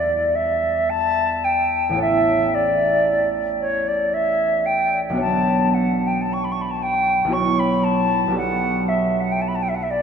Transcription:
Already playing: harp E2 G3 E4 F#4 E5, flute D5
0.35 flute E5
0.89 flute A5
1.44 flute G5
1.89 harp A1 B3 E4
1.95 harp A4 C#5
2.01 flute E5
2.54 flute D5
3.60 flute C#5
3.87 flute D5
4.13 flute E5
4.66 flute G5
5.10 harp B1 B3 D4
5.15 harp F#4 C#5
5.20 flute A5
5.74 flute F#5
6.07 flute G5
6.21 flute A5
6.33 flute C#6
6.44 flute B5
6.51 flute C#6
6.61 flute B5
6.70 flute A5
6.82 flute G5
7.25 harp B1 B3 E4
7.30 harp F#4 C#5, flute C#6
7.59 flute B5
7.84 flute A5
8.27 harp B1 B3 G4
8.33 harp A4 D5
8.37 flute F#5
8.88 flute E5
9.20 flute F#5
9.31 flute G5
9.41 flute A5
9.48 flute B5
9.55 flute A5
9.62 flute G5
9.68 flute E5
9.74 flute F#5
9.83 flute E5
9.90 flute D5

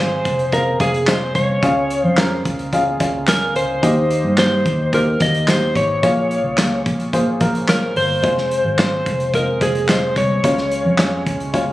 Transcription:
Already playing: fingered electric bass G#1, upright piano C4 F4 G#4 F5 G#5
0.00 lead electric guitar C5
0.25 fingered electric bass F1, kick, closed hi-hat
0.39 closed hi-hat
0.52 upright piano C4 F4 G#4 F5, lead electric guitar A#4, kick, closed hi-hat
0.80 fingered electric bass F1, upright piano C4 F4 G#4 F5, lead electric guitar G#4, kick, closed hi-hat
0.94 closed hi-hat
1.07 upright piano C4 F4 G#4 D#5, lead electric guitar C5, snare, clap, closed hi-hat
1.35 fingered electric bass C2, lead electric guitar C#5, kick, closed hi-hat
1.63 fingered electric bass C#2, upright piano C#3 C#4 F4 G#4 F5, kick, closed hi-hat
1.90 closed hi-hat
2.04 fingered electric bass F2, lead electric guitar C5
2.17 upright piano C#4 F4 G#4 A#4, snare, clap, closed hi-hat
2.45 fingered electric bass C#2, kick, closed hi-hat
2.59 closed hi-hat
2.73 upright piano C#4 F4 G#4 F5, kick, closed hi-hat
3.00 fingered electric bass C#2, upright piano C#4 F4 G#4 F5, kick, closed hi-hat
3.27 upright piano C#4 F4 G#4 G#5, lead electric guitar A#4, snare, clap, closed hi-hat
3.55 fingered electric bass C#2, lead electric guitar C5, closed hi-hat
3.83 fingered electric bass D#2, upright piano D#3 A#3 D#4 G4 D#5, kick, closed hi-hat
4.10 closed hi-hat
4.24 fingered electric bass G2
4.37 upright piano A#3 D#4 G4 C5, lead electric guitar C5, snare, clap, closed hi-hat
4.65 fingered electric bass D#2, kick, closed hi-hat
4.93 upright piano A#3 D#4 G4 C5, lead electric guitar A#4, kick, closed hi-hat
5.20 fingered electric bass D#2, upright piano A#3 D#4 G4 D#5, lead electric guitar D#5, kick, closed hi-hat
5.34 closed hi-hat
5.48 upright piano A#3 D#4 G4 D#5, lead electric guitar C5, snare, clap, closed hi-hat
5.75 fingered electric bass G#1, lead electric guitar C#5, kick, closed hi-hat
6.03 fingered electric bass A#1, upright piano A#2 A#3 F4 G#4 C#5, kick, closed hi-hat
6.31 closed hi-hat
6.44 fingered electric bass C#2
6.58 upright piano A#3 F4 G#4 C#5, snare, clap, closed hi-hat
6.86 fingered electric bass A#1, kick, closed hi-hat
7.00 closed hi-hat
7.13 upright piano A#3 F4 G#4 C5, kick, closed hi-hat
7.40 fingered electric bass A#1, upright piano A#3 F4 G#4 A#4, kick, closed hi-hat
7.55 closed hi-hat
7.68 upright piano A#3 F4 G#4 C#5, lead electric guitar A#4, snare, clap, closed hi-hat
7.96 fingered electric bass G1, lead electric guitar C5, open hi-hat
8.23 fingered electric bass F1, upright piano G#3 C4 F4 C5, kick, closed hi-hat
8.38 snare
8.51 closed hi-hat
8.64 fingered electric bass G#1
8.78 upright piano G#3 C4 F4 C5, lead electric guitar C5, snare, clap, closed hi-hat
9.06 fingered electric bass F1, kick, closed hi-hat
9.20 closed hi-hat
9.34 upright piano G#3 C4 F4 D#5, lead electric guitar A#4, kick, closed hi-hat
9.61 fingered electric bass F1, upright piano G#3 C4 F4 C5, lead electric guitar G#4, kick, closed hi-hat
9.75 closed hi-hat
9.88 upright piano G#3 C4 F4 D#5, lead electric guitar C5, snare, clap, closed hi-hat
10.16 fingered electric bass C2, lead electric guitar C#5, kick, closed hi-hat
10.44 fingered electric bass C#2, upright piano C#3 G#3 C#4 F4 C#5, kick, closed hi-hat
10.57 snare
10.71 closed hi-hat
10.85 fingered electric bass F2
10.98 upright piano G#3 C#4 F4 C#5, snare, clap, closed hi-hat
11.26 fingered electric bass C#2, kick, closed hi-hat
11.40 closed hi-hat
11.53 upright piano G#3 C#4 F4 C#5, kick, closed hi-hat

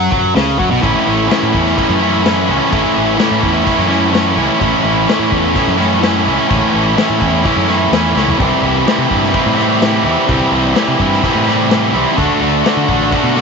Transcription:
Already playing: distorted electric guitar F#3
0.11 fingered electric bass F#2, distorted electric guitar F#3, kick
0.35 fingered electric bass C#2, distorted electric guitar C#3, snare, open hi-hat
0.59 fingered electric bass F#2, distorted electric guitar F#3, kick
0.71 fingered electric bass B1, distorted electric guitar B2
0.81 fingered electric bass A1, distorted electric guitar A2 E3 A3 C#4 E4, kick, crash
1.05 fingered electric bass A1, distorted electric guitar A3 C#4 E4
1.28 distorted electric guitar A2 E3 A3 C#4 E4, snare, crash
1.43 fingered electric bass A2
1.52 fingered electric bass E2, distorted electric guitar A3 C#4 E4, kick
1.67 snare
1.76 distorted electric guitar E3 A3 C#4 E4, kick, crash
1.89 fingered electric bass F#2
1.99 distorted electric guitar A2 E3 A3 C#4 E4
2.23 distorted electric guitar E3 A3 C#4 E4, snare, crash
2.47 fingered electric bass C#2, distorted electric guitar A3 C#4 E4
2.70 fingered electric bass A1, distorted electric guitar A2 E3 A3 C#4 E4, kick, crash
2.94 fingered electric bass A1, distorted electric guitar A3 C#4 E4
3.17 distorted electric guitar A2 E3 A3 C#4 E4, snare, crash
3.31 fingered electric bass A2
3.41 fingered electric bass E2, distorted electric guitar A3 C#4 E4, kick
3.65 distorted electric guitar E3 A3 C#4 E4, kick, crash
3.78 fingered electric bass F#2
3.88 distorted electric guitar A2 E3 A3 C#4 E4, snare
4.12 distorted electric guitar E3 A3 C#4 E4, snare, crash
4.35 fingered electric bass C#2, distorted electric guitar A3 C#4 E4
4.59 fingered electric bass A1, distorted electric guitar A2 E3 A3 C#4 E4, kick, crash
4.83 fingered electric bass A1, distorted electric guitar A3 C#4 E4
5.07 distorted electric guitar A2 E3 A3 C#4 E4, snare, crash
5.19 fingered electric bass A2
5.30 fingered electric bass E2, distorted electric guitar A3 C#4 E4, kick
5.54 distorted electric guitar E3 A3 C#4 E4, kick, crash
5.67 fingered electric bass F#2
5.77 distorted electric guitar A2 E3 A3 C#4 E4, snare
6.00 distorted electric guitar E3 A3 C#4 E4, snare, crash
6.24 fingered electric bass C#2, distorted electric guitar A3 C#4 E4
6.48 fingered electric bass A1, distorted electric guitar A2 E3 A3 C#4 E4, kick, crash
6.72 fingered electric bass A1, distorted electric guitar A3 C#4 E4
6.95 distorted electric guitar A2 E3 A3 C#4 E4, snare, crash
7.10 fingered electric bass A2
7.19 fingered electric bass E2, distorted electric guitar A3 C#4 E4, kick
7.43 distorted electric guitar E3 A3 C#4 E4, kick, crash
7.56 fingered electric bass F#2
7.67 distorted electric guitar A2 E3 A3 C#4 E4, snare
7.91 fingered electric bass E2, distorted electric guitar E3 A3 C#4 E4, snare, crash
8.15 fingered electric bass C#2, distorted electric guitar A3 C#4 E4, snare
8.28 floor tom
8.38 fingered electric bass C2, distorted electric guitar C3 E3 G3 C4 E4, kick, crash
8.62 fingered electric bass C2, distorted electric guitar G3 C4 E4
8.85 distorted electric guitar C3 E3 G3 C4 E4, snare, crash
8.98 fingered electric bass C3
9.09 fingered electric bass G2, distorted electric guitar G3 C4 E4, kick
9.23 snare
9.32 distorted electric guitar E3 G3 C4 E4, kick, crash
9.46 fingered electric bass A2
9.56 distorted electric guitar C3 E3 G3 C4 E4, snare
9.81 distorted electric guitar E3 G3 C4 E4, snare, crash
10.04 fingered electric bass E2, distorted electric guitar G3 C4 E4
10.27 fingered electric bass C2, distorted electric guitar C3 E3 G3 C4 E4, kick, crash
10.51 fingered electric bass C2, distorted electric guitar G3 C4 E4
10.75 distorted electric guitar C3 E3 G3 C4 E4, snare, crash
10.88 fingered electric bass C3
10.99 fingered electric bass G2, distorted electric guitar G3 C4 E4, kick
11.13 snare
11.23 distorted electric guitar E3 G3 C4 E4, kick, crash
11.35 fingered electric bass A2
11.46 distorted electric guitar C3 E3 G3 C4 E4, snare
11.69 distorted electric guitar E3 G3 C4 E4, snare, crash
11.93 fingered electric bass C2, distorted electric guitar G3 C4 E4
12.17 fingered electric bass D2, distorted electric guitar D3 A3 D4 F#4, kick, crash
12.40 fingered electric bass D2, distorted electric guitar A3 D4 F#4
12.64 distorted electric guitar D3 A3 D4 F#4, snare, crash
12.77 fingered electric bass D3
12.88 fingered electric bass A1, distorted electric guitar A3 D4 F#4, kick
13.11 distorted electric guitar D3 A3 D4 F#4, kick, crash
13.23 fingered electric bass B2
13.34 distorted electric guitar D3 A3 D4 F#4, snare

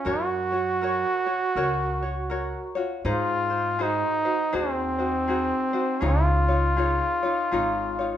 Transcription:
Already playing: trumpet C#4
0.05 upright bass F#2, ukulele F#4 A#4 C#5, trumpet F#4
0.52 ukulele F#4 C#5
0.82 ukulele F#4 A#4 C#5
1.26 ukulele F#4 C#5
1.55 upright bass C#2, ukulele F#4 A#4 C#5
2.02 ukulele F#4 C#5
2.30 ukulele F#4 A#4 C#5
2.75 ukulele F4 F#4 C#5
3.05 upright bass G#2, ukulele D#4 G#4 C5, trumpet F4
3.50 ukulele D#4 C5
3.79 ukulele D#4 F#4 G#4 C5, trumpet D#4
4.25 ukulele D#4 F#4 C5
4.52 upright bass D#2, trumpet C4, ukulele D#4 F#4 G#4 C5
4.98 ukulele D#4 F#4 C5
5.28 ukulele D#4 F#4 G#4 C5
5.73 ukulele D#4 F#4 C5
6.01 upright bass C#2, ukulele D#4 F4 G#4 C#5
6.07 trumpet F4
6.48 ukulele D#4 F4 C#5
6.77 ukulele D#4 F4 G#4 C#5
7.23 ukulele D#4 F4 C#5
7.51 upright bass G#1, ukulele D#4 F4 G#4 C#5
7.99 ukulele D#4 F4 C#5

